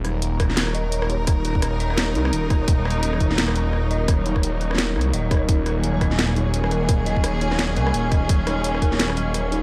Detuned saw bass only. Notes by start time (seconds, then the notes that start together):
Already playing: D#1
1.28 D#1
2.15 C2
2.33 D#1
2.68 D#1
4.08 D#1
4.96 C2
5.13 D#1
5.49 D#1
6.89 D#1
7.77 C2
7.94 D#1
8.29 D#1